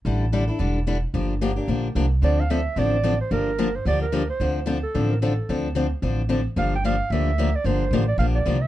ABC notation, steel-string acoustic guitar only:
X:1
M:4/4
L:1/8
Q:"Swing" 1/4=222
K:Dm
V:1 name="Steel-string acoustic guitar"
[D,G,DEA] z [D,G,DEA] [DEA] [D,G,DEA] z [D,G,DEA] z | [D,F,B,DG] z [D,F,B,DG] [B,DG] [D,F,B,DG] z [D,F,B,DG] z | [D,F,CDA] z [D,F,CDA] z [D,F,CDA] z [D,F,CDA] z | [D,F,B,DG] z [D,F,B,DG] z [D,F,B,DG] z [D,F,B,DG] z |
[D,F,CDA] z [D,F,CDA] z [D,F,CDA] z [D,F,CDA] z | [D,F,CDA] z [D,F,CDA] z [D,F,CDA] z [D,F,CDA] z | [D,F,B,DG] z [D,F,B,DG] z [D,F,B,DG] z [D,F,B,DG] z | [D,F,B,DG] z [D,F,B,DG] z [D,F,B,DG] z [D,F,B,DG] z |]